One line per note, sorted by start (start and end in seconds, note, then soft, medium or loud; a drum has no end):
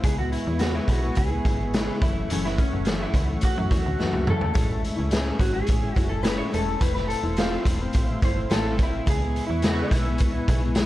0.00 0.18 C#3 medium
0.00 1.99 B4 medium
0.00 9.03 E5 medium
0.00 1.99 G#5 medium
0.00 6.77 C#6 medium
0.00 kick loud
0.04 0.38 C#2 medium
0.04 0.19 G#3 medium
0.04 0.19 B3 medium
0.04 0.17 E4 medium
0.04 0.18 G#4 medium
0.04 closed hi-hat loud
0.18 0.48 G#3 soft
0.18 0.47 B3 soft
0.18 0.46 E4 medium
0.18 0.32 F#4 medium
0.32 0.58 E4 medium
0.32 closed hi-hat medium
0.47 0.80 E2 medium
0.47 0.59 G#3 soft
0.47 0.61 B3 soft
0.47 0.61 E4 soft
0.59 0.88 C#3 medium
0.59 0.89 G#3 medium
0.59 0.89 B3 medium
0.59 0.90 E4 medium
0.59 0.74 F#4 medium
0.59 snare medium
0.59 closed hi-hat medium
0.75 0.89 E4 medium
0.88 1.11 B1 medium
0.88 1.03 C#3 medium
0.88 1.03 G#3 medium
0.88 1.03 B3 medium
0.88 1.01 E4 medium
0.88 1.17 F#4 medium
0.88 kick medium
0.88 closed hi-hat medium
1.02 1.32 G#3 soft
1.02 1.31 B3 soft
1.02 1.29 E4 medium
1.15 1.40 C#2 loud
1.15 1.98 G#4 medium
1.15 kick medium
1.15 closed hi-hat medium
1.30 1.45 G#3 soft
1.30 1.45 B3 soft
1.30 1.45 E4 medium
1.45 1.91 G#1 loud
1.45 1.59 C#3 medium
1.45 1.59 G#3 medium
1.45 1.60 B3 medium
1.45 1.59 E4 medium
1.45 kick loud
1.45 closed hi-hat medium
1.60 1.73 G#3 soft
1.60 1.73 B3 medium
1.60 1.74 E4 soft
1.73 2.02 C#3 medium
1.73 2.02 G#3 medium
1.73 2.02 B3 medium
1.73 2.02 E4 medium
1.73 snare loud
1.73 closed hi-hat medium
2.02 2.24 F#1 loud
2.02 2.29 F#2 medium
2.02 2.30 E3 medium
2.02 9.04 A3 medium
2.02 2.31 A3 medium
2.02 2.31 C#4 medium
2.02 2.31 E4 medium
2.02 4.54 F#5 medium
2.02 kick loud
2.02 closed hi-hat medium
2.30 2.64 F#1 medium
2.30 2.44 F#2 medium
2.30 2.44 E3 medium
2.30 2.45 A3 medium
2.30 2.45 C#4 medium
2.30 2.43 C#4 medium
2.30 closed hi-hat loud
2.44 2.73 E3 soft
2.44 2.72 A3 soft
2.44 2.70 C#4 medium
2.44 2.58 E4 medium
2.44 snare soft
2.58 3.02 C#4 medium
2.58 kick medium
2.58 closed hi-hat medium
2.71 3.06 F#1 medium
2.71 2.85 E3 soft
2.71 2.86 A3 medium
2.71 2.86 C#4 medium
2.85 3.13 F#2 medium
2.85 3.14 E3 medium
2.85 3.15 A3 medium
2.85 3.15 C#4 medium
2.85 snare medium
2.85 closed hi-hat medium
3.03 3.15 E4 medium
3.14 3.37 C#2 medium
3.14 3.28 F#2 medium
3.14 3.29 E3 medium
3.14 3.28 A3 medium
3.14 3.26 C#4 medium
3.14 3.24 E4 medium
3.14 kick medium
3.14 closed hi-hat medium
3.27 3.57 E3 soft
3.27 3.56 A3 soft
3.27 3.54 C#4 medium
3.41 4.30 F#4 medium
3.41 kick medium
3.41 closed hi-hat medium
3.56 3.69 F#2 loud
3.56 3.70 E3 soft
3.56 3.71 A3 soft
3.56 3.70 C#4 soft
3.70 3.82 E2 loud
3.70 3.85 F#2 medium
3.70 3.85 E3 medium
3.70 3.84 A3 medium
3.70 3.83 C#4 medium
3.70 kick loud
3.70 closed hi-hat medium
3.84 3.97 D2 medium
3.84 3.98 E3 soft
3.84 3.99 A3 soft
3.84 3.99 C#4 medium
3.99 4.25 F#2 medium
3.99 4.26 E3 medium
3.99 4.27 A3 medium
3.99 4.28 C#4 medium
3.99 snare medium
4.13 4.30 C#2 medium
4.13 high tom medium
4.26 4.41 F#2 medium
4.26 4.51 F#2 loud
4.26 4.41 E3 medium
4.26 4.41 A3 medium
4.26 4.39 C#4 medium
4.26 4.81 A4 medium
4.26 mid tom loud
4.40 4.53 E3 soft
4.40 4.54 A3 soft
4.40 4.53 C#4 soft
4.40 floor tom medium
4.54 4.90 A1 loud
4.54 4.69 A2 medium
4.54 4.69 G#3 medium
4.54 4.68 C#4 loud
4.54 4.66 E4 medium
4.54 6.79 G#5 medium
4.54 kick loud
4.54 closed hi-hat medium
4.68 4.98 G#3 soft
4.68 4.97 C#4 soft
4.68 4.95 E4 soft
4.84 closed hi-hat medium
4.96 5.32 C#2 medium
4.96 5.10 G#3 soft
4.96 5.11 C#4 medium
4.96 5.11 E4 medium
5.11 5.37 A2 medium
5.11 5.39 G#3 loud
5.11 5.39 C#4 medium
5.11 5.40 E4 loud
5.11 snare loud
5.11 closed hi-hat medium
5.39 5.62 G#1 medium
5.39 5.54 A2 medium
5.39 5.54 G#3 medium
5.39 5.53 C#4 medium
5.39 5.51 E4 medium
5.39 5.53 F#4 medium
5.39 kick loud
5.39 closed hi-hat medium
5.52 5.83 G#3 soft
5.52 5.81 C#4 soft
5.52 5.80 E4 medium
5.52 5.95 G#4 loud
5.67 5.92 A1 medium
5.67 kick medium
5.67 closed hi-hat medium
5.81 5.94 G#3 soft
5.81 5.95 C#4 soft
5.81 5.96 E4 soft
5.95 6.42 F#1 medium
5.95 6.10 A2 medium
5.95 6.10 G#3 medium
5.95 6.09 C#4 medium
5.95 6.07 E4 medium
5.95 6.06 F#4 loud
5.95 kick medium
5.95 closed hi-hat medium
6.09 6.22 G#3 soft
6.09 6.22 C#4 soft
6.09 6.23 E4 medium
6.09 6.23 A4 medium
6.22 6.50 A2 medium
6.22 6.51 G#3 medium
6.22 6.52 C#4 medium
6.22 6.53 E4 loud
6.22 6.38 B4 medium
6.22 snare loud
6.22 closed hi-hat loud
6.38 6.53 C#5 loud
6.51 6.76 E1 medium
6.51 6.66 A2 medium
6.51 6.67 G#3 medium
6.51 6.67 C#4 medium
6.51 6.65 E4 medium
6.51 6.80 A4 medium
6.51 closed hi-hat medium
6.67 6.80 G#3 soft
6.67 6.81 C#4 soft
6.67 6.81 E4 soft
6.80 7.15 F1 loud
6.80 6.95 F3 medium
6.80 6.95 A3 medium
6.80 6.94 C4 medium
6.80 6.93 E4 loud
6.80 6.93 B4 medium
6.80 9.05 F5 medium
6.80 9.05 C6 medium
6.80 kick loud
6.80 closed hi-hat loud
6.94 7.25 A3 soft
6.94 7.24 C4 medium
6.94 7.22 E4 medium
6.94 7.08 B4 medium
6.94 snare soft
7.08 7.35 A4 medium
7.08 closed hi-hat medium
7.23 7.57 E1 medium
7.23 7.37 A3 soft
7.23 7.37 C4 soft
7.23 7.38 E4 medium
7.36 7.64 F3 medium
7.36 7.65 A3 medium
7.36 7.66 C4 medium
7.36 7.67 E4 medium
7.36 7.64 F4 medium
7.36 snare loud
7.36 closed hi-hat medium
7.65 7.89 E1 medium
7.65 7.80 F3 medium
7.65 7.80 A3 medium
7.65 7.81 C4 medium
7.65 7.79 E4 medium
7.65 kick medium
7.65 closed hi-hat medium
7.80 8.10 A3 medium
7.80 8.09 C4 medium
7.80 8.07 E4 medium
7.93 8.17 A1 medium
7.93 kick medium
7.93 closed hi-hat medium
8.08 8.22 A3 soft
8.08 8.22 C4 medium
8.08 8.23 E4 soft
8.22 8.45 G1 loud
8.22 8.36 F3 medium
8.22 8.37 A3 medium
8.22 8.36 C4 medium
8.22 8.34 E4 medium
8.22 8.50 C5 loud
8.22 kick loud
8.22 closed hi-hat medium
8.35 8.49 A3 soft
8.35 8.50 C4 soft
8.35 8.50 E4 medium
8.50 8.80 A1 loud
8.50 8.77 F3 medium
8.50 8.78 A3 medium
8.50 8.78 C4 medium
8.50 8.79 E4 medium
8.50 8.78 A4 loud
8.50 snare loud
8.50 closed hi-hat loud
8.78 9.02 G1 medium
8.78 9.06 F3 medium
8.78 9.06 A3 medium
8.78 9.07 C4 medium
8.78 9.06 E4 medium
8.78 kick loud
8.78 closed hi-hat medium
8.83 9.10 E4 medium
9.06 9.41 C#2 medium
9.06 9.21 C#3 medium
9.06 9.21 G#3 medium
9.06 9.20 B3 medium
9.06 9.19 E4 medium
9.06 10.86 B4 medium
9.06 10.86 E5 medium
9.06 10.86 G#5 medium
9.06 10.86 C#6 medium
9.06 kick loud
9.06 closed hi-hat loud
9.10 9.44 G#4 loud
9.20 9.50 G#3 soft
9.20 9.48 B3 soft
9.20 9.47 E4 medium
9.36 closed hi-hat medium
9.47 9.84 E2 medium
9.47 9.63 B3 soft
9.47 9.66 E4 medium
9.47 9.63 E4 medium
9.51 9.62 G#3 soft
9.62 9.90 C#3 medium
9.62 9.91 G#3 medium
9.62 9.92 B3 medium
9.62 9.92 E4 medium
9.62 9.84 F#4 loud
9.62 snare medium
9.62 closed hi-hat medium
9.83 10.86 E4 medium
9.91 10.22 B1 medium
9.91 10.06 C#3 medium
9.91 10.06 G#3 medium
9.91 10.06 B3 medium
9.91 10.04 E4 medium
9.91 kick medium
9.91 closed hi-hat medium
10.05 10.34 G#3 soft
10.05 10.33 B3 soft
10.05 10.32 E4 medium
10.18 10.43 C#2 medium
10.18 kick loud
10.18 closed hi-hat medium
10.33 10.48 G#3 soft
10.33 10.49 B3 soft
10.33 10.48 E4 medium
10.48 10.86 B1 loud
10.48 10.62 C#3 medium
10.48 10.63 G#3 medium
10.48 10.62 B3 medium
10.48 10.60 E4 medium
10.48 kick medium
10.48 closed hi-hat medium
10.61 10.76 G#3 medium
10.61 10.77 B3 soft
10.61 10.76 E4 medium
10.75 10.86 C#3 medium
10.75 10.86 G#3 medium
10.75 10.86 B3 loud
10.75 10.86 E4 loud
10.75 snare loud
10.75 closed hi-hat loud